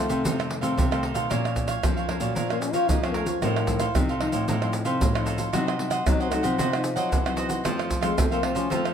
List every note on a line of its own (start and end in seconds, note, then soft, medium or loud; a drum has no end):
0.00 0.22 C3 medium
0.00 0.33 D#3 medium
0.00 0.33 A3 medium
0.00 0.78 A3 loud
0.00 0.34 C4 medium
0.08 0.22 C3 medium
0.08 0.23 A4 medium
0.08 0.23 C5 medium
0.08 0.22 F5 medium
0.08 pandeiro medium
0.08 shaker medium
0.24 0.75 F2 medium
0.24 0.59 C3 loud
0.24 0.48 D#4 medium
0.24 0.48 A4 medium
0.24 0.49 C5 soft
0.24 0.49 F5 medium
0.24 pandeiro medium
0.24 shaker medium
0.24 surdo medium
0.39 0.61 D#3 medium
0.39 0.61 A3 medium
0.39 0.61 C4 medium
0.39 pandeiro soft
0.39 tamborim medium
0.39 shaker soft
0.49 muted cavaquinho stroke soft
0.49 pandeiro medium
0.61 0.74 C3 medium
0.61 0.86 D#3 medium
0.61 0.86 A3 medium
0.61 0.86 C4 medium
0.61 0.89 A4 medium
0.61 0.89 C5 medium
0.61 0.88 F5 medium
0.61 pandeiro medium
0.61 shaker medium
0.77 1.11 C3 loud
0.77 1.28 C3 medium
0.77 pandeiro medium
0.77 shaker medium
0.77 surdo loud
0.91 1.27 D#3 medium
0.91 1.27 A3 medium
0.91 1.27 C4 medium
0.91 1.02 A4 medium
0.91 1.03 C5 medium
0.91 1.03 F5 medium
0.91 pandeiro soft
0.91 tamborim medium
0.91 shaker soft
1.03 1.16 D#4 medium
1.03 1.16 A4 medium
1.03 1.14 C5 medium
1.03 1.13 F5 medium
1.03 pandeiro medium
1.14 1.27 B2 medium
1.14 1.29 A4 medium
1.14 1.29 C5 medium
1.14 1.28 F5 medium
1.14 pandeiro medium
1.14 shaker medium
1.30 1.75 A#2 medium
1.30 1.81 A#2 medium
1.30 1.79 F3 medium
1.30 1.79 A#3 medium
1.30 1.80 C#4 medium
1.30 1.42 A#4 medium
1.30 1.43 C#5 medium
1.30 1.43 F5 medium
1.30 pandeiro medium
1.30 tamborim medium
1.30 shaker medium
1.30 surdo medium
1.44 1.68 C#5 soft
1.44 1.66 F5 soft
1.44 pandeiro soft
1.44 tamborim medium
1.44 shaker soft
1.56 pandeiro medium
1.56 shaker medium
1.56 surdo medium
1.67 1.82 C#5 medium
1.67 1.81 F5 medium
1.67 pandeiro medium
1.67 tamborim medium
1.67 shaker medium
1.83 2.34 F2 medium
1.83 2.17 F3 medium
1.83 2.06 F3 medium
1.83 2.06 A#3 medium
1.83 2.06 C#4 medium
1.83 muted cavaquinho stroke soft
1.83 pandeiro medium
1.83 tamborim medium
1.83 shaker medium
1.83 surdo loud
1.97 2.08 C#5 soft
1.97 2.09 F5 medium
1.97 pandeiro soft
1.97 shaker soft
2.08 2.34 F3 medium
2.08 2.34 A#3 medium
2.08 2.34 C#4 medium
2.08 2.21 A#4 soft
2.08 2.21 C#5 medium
2.08 2.19 F5 medium
2.08 pandeiro medium
2.08 tamborim medium
2.20 2.33 A#2 medium
2.20 2.38 F#3 medium
2.20 2.35 C#5 soft
2.20 2.34 F5 medium
2.20 pandeiro medium
2.20 shaker medium
2.35 2.70 A#2 medium
2.35 2.87 A#2 medium
2.35 2.52 F3 medium
2.35 2.48 A#4 medium
2.35 2.48 C#5 medium
2.35 2.48 F5 medium
2.35 pandeiro medium
2.35 shaker medium
2.35 surdo medium
2.49 2.99 F3 medium
2.49 2.63 A#3 medium
2.49 2.99 A#3 medium
2.49 2.99 C#4 medium
2.49 2.61 C#5 soft
2.49 2.62 F5 medium
2.49 pandeiro soft
2.49 tamborim medium
2.49 shaker soft
2.62 2.75 C#4 medium
2.62 muted cavaquinho stroke soft
2.62 pandeiro medium
2.62 shaker medium
2.73 2.86 F3 medium
2.73 2.91 F4 medium
2.73 3.01 C#5 medium
2.73 3.00 F5 medium
2.73 pandeiro medium
2.73 shaker medium
2.89 3.39 F2 medium
2.89 3.34 F3 medium
2.89 3.05 D#4 medium
2.89 pandeiro medium
2.89 shaker medium
2.89 surdo loud
3.03 3.38 F3 medium
3.03 3.39 A#3 medium
3.03 3.16 C4 medium
3.03 3.39 C#4 medium
3.03 3.14 C#5 soft
3.03 3.15 F5 soft
3.03 pandeiro soft
3.03 tamborim medium
3.03 shaker soft
3.14 3.28 A3 medium
3.14 3.27 A#4 medium
3.14 3.27 C#5 medium
3.14 3.25 F5 medium
3.14 pandeiro medium
3.26 3.43 F3 medium
3.26 3.41 C#5 soft
3.26 3.40 F5 soft
3.26 pandeiro medium
3.26 shaker medium
3.42 3.92 A2 medium
3.42 3.87 A2 medium
3.42 3.95 D#3 medium
3.42 3.64 F3 medium
3.42 3.65 C4 medium
3.42 3.54 D#4 medium
3.42 3.65 D#4 medium
3.42 3.55 A4 medium
3.42 3.55 C5 medium
3.42 3.55 F5 medium
3.42 pandeiro medium
3.42 tamborim medium
3.42 shaker medium
3.42 surdo medium
3.56 3.80 A4 soft
3.56 3.79 C5 soft
3.56 3.78 F5 soft
3.56 pandeiro soft
3.56 tamborim medium
3.56 shaker soft
3.67 3.84 F3 medium
3.67 3.84 C4 medium
3.67 3.84 D#4 medium
3.67 pandeiro medium
3.67 shaker medium
3.67 surdo medium
3.79 3.94 A4 medium
3.79 3.93 C5 medium
3.79 3.93 F5 medium
3.79 pandeiro medium
3.79 tamborim medium
3.79 shaker medium
3.95 4.45 A2 medium
3.95 4.29 C3 medium
3.95 4.11 F3 medium
3.95 4.11 C4 medium
3.95 4.11 D#4 medium
3.95 pandeiro medium
3.95 tamborim medium
3.95 shaker medium
3.95 surdo loud
4.09 4.20 A4 soft
4.09 4.21 C5 soft
4.09 4.21 F5 medium
4.09 pandeiro soft
4.09 shaker soft
4.20 4.56 F3 medium
4.20 4.57 C4 medium
4.20 4.33 D#4 soft
4.20 4.57 D#4 medium
4.20 4.33 A4 soft
4.20 4.32 C5 medium
4.20 4.31 F5 medium
4.20 pandeiro medium
4.20 tamborim medium
4.32 4.45 A2 medium
4.32 4.47 A4 soft
4.32 4.46 C5 medium
4.32 4.46 F5 medium
4.32 pandeiro medium
4.32 shaker medium
4.48 4.98 A2 medium
4.48 4.82 A2 loud
4.48 4.60 D#4 medium
4.48 4.60 A4 medium
4.48 4.61 C5 medium
4.48 4.60 F5 medium
4.48 pandeiro medium
4.48 shaker medium
4.48 surdo medium
4.62 5.10 F3 medium
4.62 5.11 C4 medium
4.62 5.11 D#4 medium
4.62 4.72 A4 soft
4.62 4.73 C5 soft
4.62 4.73 F5 soft
4.62 pandeiro soft
4.62 tamborim medium
4.62 shaker soft
4.73 muted cavaquinho stroke soft
4.73 pandeiro medium
4.73 shaker medium
4.85 5.01 C3 medium
4.85 5.13 A4 medium
4.85 5.12 C5 medium
4.85 5.12 F5 medium
4.85 pandeiro medium
4.85 shaker medium
5.01 5.46 A2 medium
5.01 5.51 A2 medium
5.01 pandeiro medium
5.01 shaker medium
5.01 surdo loud
5.14 5.50 F3 medium
5.14 5.50 C4 medium
5.14 5.50 D#4 medium
5.14 5.25 A4 soft
5.14 5.25 C5 medium
5.14 5.26 F5 medium
5.14 pandeiro soft
5.14 tamborim medium
5.14 shaker soft
5.25 5.38 D#4 medium
5.25 5.39 A4 medium
5.25 5.38 C5 medium
5.25 5.36 F5 medium
5.25 pandeiro medium
5.25 shaker medium
5.38 5.52 A4 soft
5.38 5.52 C5 soft
5.38 5.51 F5 soft
5.38 pandeiro medium
5.38 shaker medium
5.53 5.98 C3 medium
5.53 6.04 C3 medium
5.53 5.76 F#3 medium
5.53 5.76 C4 medium
5.53 5.76 D#4 medium
5.53 5.65 F#4 medium
5.53 5.66 C5 medium
5.53 5.66 D#5 medium
5.53 5.66 F#5 medium
5.53 pandeiro medium
5.53 tamborim medium
5.53 shaker medium
5.53 surdo medium
5.67 5.91 C5 soft
5.67 5.90 D#5 soft
5.67 5.89 F#5 medium
5.67 pandeiro soft
5.67 tamborim medium
5.67 shaker soft
5.79 6.02 F#3 medium
5.79 6.02 C4 medium
5.79 6.02 D#4 medium
5.79 pandeiro medium
5.90 6.05 C5 medium
5.90 6.05 D#5 medium
5.90 6.04 F#5 medium
5.90 pandeiro medium
5.90 tamborim medium
5.90 shaker medium
6.06 6.57 C3 medium
6.06 6.40 F#3 medium
6.06 6.29 F#3 medium
6.06 6.29 C4 medium
6.06 6.22 D#4 medium
6.06 6.29 D#4 medium
6.06 muted cavaquinho stroke soft
6.06 pandeiro medium
6.06 tamborim medium
6.06 shaker medium
6.06 surdo loud
6.20 6.34 C4 medium
6.20 6.31 C5 soft
6.20 6.31 D#5 soft
6.20 6.32 F#5 medium
6.20 pandeiro soft
6.20 shaker soft
6.31 6.58 F#3 medium
6.31 6.47 A3 medium
6.31 6.58 C4 medium
6.31 6.58 D#4 medium
6.31 6.44 F#4 soft
6.31 6.43 C5 medium
6.31 6.42 D#5 medium
6.31 6.41 F#5 medium
6.31 pandeiro medium
6.31 tamborim medium
6.31 shaker medium
6.43 6.56 C3 medium
6.43 7.25 F3 medium
6.43 6.57 C5 soft
6.43 6.57 D#5 medium
6.43 6.57 F#5 medium
6.43 pandeiro medium
6.43 shaker medium
6.58 6.93 C3 medium
6.58 7.10 C3 medium
6.58 6.71 F#4 medium
6.58 6.71 C5 medium
6.58 6.72 D#5 medium
6.58 6.71 F#5 medium
6.58 pandeiro medium
6.58 shaker medium
6.58 surdo medium
6.72 7.22 C4 medium
6.72 7.22 D#4 medium
6.72 6.83 C5 soft
6.72 6.83 D#5 soft
6.72 6.83 F#5 medium
6.72 pandeiro soft
6.72 tamborim medium
6.72 shaker soft
6.84 muted cavaquinho stroke soft
6.84 pandeiro medium
6.84 shaker medium
6.96 7.12 F#3 medium
6.96 7.24 C5 medium
6.96 7.23 D#5 medium
6.96 7.23 F#5 medium
6.96 pandeiro medium
6.96 shaker medium
7.12 7.63 C3 medium
7.12 7.57 E3 medium
7.12 pandeiro medium
7.12 shaker medium
7.12 surdo loud
7.26 7.61 F#3 medium
7.26 7.61 C4 medium
7.26 7.62 D#4 medium
7.26 7.36 C5 soft
7.26 7.37 D#5 soft
7.26 7.37 F#5 medium
7.26 pandeiro soft
7.26 tamborim medium
7.26 shaker soft
7.36 7.50 F#4 medium
7.36 7.49 C5 medium
7.36 7.48 D#5 medium
7.36 7.47 F#5 medium
7.36 pandeiro medium
7.36 shaker medium
7.49 7.63 C5 soft
7.49 7.63 D#5 soft
7.49 7.62 F#5 medium
7.49 pandeiro medium
7.49 shaker medium
7.64 8.15 F2 medium
7.64 8.10 F3 medium
7.64 8.01 F3 medium
7.64 8.01 A3 medium
7.64 8.01 C4 medium
7.64 7.77 F4 medium
7.64 7.77 A4 medium
7.64 7.77 C5 medium
7.64 7.77 F5 medium
7.64 pandeiro medium
7.64 tamborim medium
7.64 shaker medium
7.64 surdo medium
7.78 8.02 A4 soft
7.78 8.01 C5 soft
7.78 8.00 F5 soft
7.78 pandeiro soft
7.78 tamborim medium
7.78 shaker soft
7.91 pandeiro medium
7.91 shaker medium
7.91 surdo medium
8.01 8.26 F3 medium
8.01 8.20 G#3 medium
8.01 8.26 A3 medium
8.01 8.26 C4 medium
8.01 8.16 A4 soft
8.01 8.16 C5 medium
8.01 8.15 F5 medium
8.01 pandeiro medium
8.01 tamborim medium
8.01 shaker medium
8.18 8.51 C3 medium
8.18 8.68 C3 medium
8.18 8.34 A3 medium
8.18 pandeiro medium
8.18 tamborim medium
8.18 shaker medium
8.18 surdo loud
8.31 8.67 F3 medium
8.31 8.67 A3 medium
8.31 8.45 A#3 medium
8.31 8.67 C4 medium
8.31 8.42 A4 soft
8.31 8.43 C5 soft
8.31 8.43 F5 medium
8.31 pandeiro soft
8.31 shaker soft
8.43 8.57 C4 medium
8.43 8.56 F4 medium
8.43 8.55 A4 medium
8.43 8.55 C5 medium
8.43 8.53 F5 medium
8.43 pandeiro medium
8.43 tamborim medium
8.55 8.67 F3 medium
8.55 8.73 C#4 medium
8.55 8.69 A4 soft
8.55 8.69 C5 medium
8.55 8.68 F5 medium
8.55 pandeiro medium
8.55 shaker medium
8.70 8.94 F2 medium
8.70 8.94 F3 loud
8.70 8.94 F3 medium
8.70 8.94 A3 medium
8.70 8.87 C4 medium
8.70 8.94 C4 medium
8.70 8.83 F4 medium
8.70 8.83 A4 medium
8.70 8.83 C5 medium
8.70 8.84 F5 medium
8.70 pandeiro medium
8.70 shaker medium
8.70 surdo medium
8.85 8.94 F3 medium
8.85 8.94 A4 soft
8.85 8.94 C5 soft
8.85 8.94 F5 medium
8.85 pandeiro soft
8.85 tamborim medium
8.85 shaker soft